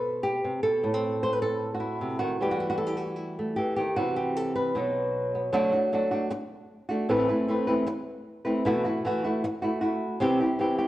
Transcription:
Already playing: B2 A4
0.23 G4
0.44 C3
0.63 B2 A4
0.83 A2 A3
0.94 C4
1.23 C5
1.33 B4
1.42 A4
1.74 F#4
1.80 E4
2.01 C3
2.19 D#3 F#4
2.41 E3 G3 A3 G4
2.51 F#4
2.60 E4
2.70 F#4
2.78 A4
2.87 G4
2.97 F#4
3.16 E4
3.39 A3
3.56 E3 G4
3.76 D#3 G4
3.96 C3 E3 C4 E4 F#4
4.16 G4
4.36 A4
4.55 B4
4.75 B2 F#3 B3 D#4
5.35 B3
5.53 D3 F#3 A3 D4 F#4
5.72 A3 D4 F#4
5.92 F#3 A3 D4 F#4
6.11 A3 D4 F#4
6.31 muted nylon-string guitar stroke
6.89 A3 D4 F#4
7.09 A2 E3 A3 C4 E4 B4
7.29 A3 C4 E4 B4
7.48 A3 C4 E4 B4
7.67 A3 C4 E4 B4
7.87 muted nylon-string guitar stroke
8.45 A3 C4 E4 B4
8.65 B2 E3 A3 E4 F#4
8.85 A3 E4 F#4
9.05 E3 A3 E4 F#4
9.24 A3 E4 F#4
9.44 muted nylon-string guitar stroke
9.62 A3 E4 F#4
9.81 A3 E4 F#4
10.20 C3 E3 C4 E4 G4
10.40 C4 E4 G4
10.59 E3 C4 E4 G4
10.78 C4 E4 G4

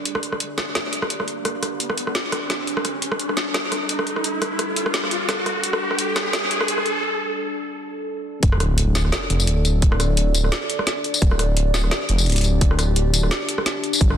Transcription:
Already playing: D4 D5, riser
0.05 G4, closed hi-hat
0.15 cross-stick
0.23 closed hi-hat
0.32 cross-stick
0.40 closed hi-hat
0.58 cross-stick, snare, closed hi-hat
0.75 cross-stick, snare, closed hi-hat
0.93 closed hi-hat
1.02 cross-stick
1.10 closed hi-hat
1.20 cross-stick
1.28 closed hi-hat
1.45 cross-stick, closed hi-hat
1.63 cross-stick, closed hi-hat
1.80 closed hi-hat
1.90 cross-stick
1.98 closed hi-hat
2.07 cross-stick
2.15 snare, closed hi-hat
2.32 cross-stick, closed hi-hat
2.50 cross-stick, snare, closed hi-hat
2.67 closed hi-hat
2.77 cross-stick
2.85 G3 A4, cross-stick, closed hi-hat
3.02 closed hi-hat
3.12 cross-stick
3.19 closed hi-hat
3.29 cross-stick
3.37 snare, closed hi-hat
3.54 cross-stick, snare, closed hi-hat
3.72 cross-stick, closed hi-hat
3.89 closed hi-hat
3.99 cross-stick
4.07 closed hi-hat
4.16 cross-stick
4.24 closed hi-hat
4.42 cross-stick, closed hi-hat
4.59 cross-stick, closed hi-hat
4.76 closed hi-hat
4.86 cross-stick
4.94 snare, closed hi-hat
5.04 cross-stick
5.11 closed hi-hat
5.29 cross-stick, snare, closed hi-hat
5.46 cross-stick, closed hi-hat
5.63 closed hi-hat
5.73 cross-stick
5.91 cross-stick
5.99 closed hi-hat
6.16 cross-stick, snare, closed hi-hat
6.33 cross-stick, snare, closed hi-hat
6.51 closed hi-hat
6.61 cross-stick
6.68 closed hi-hat
6.78 cross-stick
6.86 closed hi-hat
8.43 D1 D4 A4 D5, kick, closed hi-hat, sub drop
8.52 cross-stick
8.60 cross-stick, closed hi-hat
8.78 closed hi-hat
8.95 snare, closed hi-hat, tambourine
9.05 cross-stick
9.12 snare, closed hi-hat
9.30 F1, closed hi-hat
9.40 tambourine
9.47 D1, closed hi-hat
9.65 closed hi-hat, tambourine
9.82 D1, kick, closed hi-hat
9.92 cross-stick
10.00 cross-stick, closed hi-hat, tambourine
10.17 closed hi-hat
10.35 closed hi-hat, tambourine
10.44 cross-stick
10.52 snare, closed hi-hat
10.70 closed hi-hat
10.79 cross-stick
10.87 snare, closed hi-hat
11.04 closed hi-hat
11.14 tambourine
11.22 D1 G4, kick, closed hi-hat
11.31 cross-stick
11.39 cross-stick, closed hi-hat
11.57 closed hi-hat
11.74 snare, closed hi-hat, tambourine
11.84 cross-stick
11.91 snare, closed hi-hat
12.09 F1, closed hi-hat
12.18 tambourine
12.26 D1, closed hi-hat
12.30 closed hi-hat
12.32 closed hi-hat
12.36 closed hi-hat
12.38 closed hi-hat
12.41 closed hi-hat
12.44 closed hi-hat, tambourine
12.61 D1, kick, closed hi-hat
12.71 cross-stick
12.79 cross-stick, closed hi-hat, tambourine
12.96 closed hi-hat
13.14 closed hi-hat, tambourine
13.23 cross-stick
13.31 snare, closed hi-hat
13.49 closed hi-hat
13.58 cross-stick
13.66 snare, closed hi-hat
13.84 closed hi-hat
13.93 tambourine
13.95 tambourine
13.98 G1 G3 A4, kick, closed hi-hat, tambourine
14.10 cross-stick

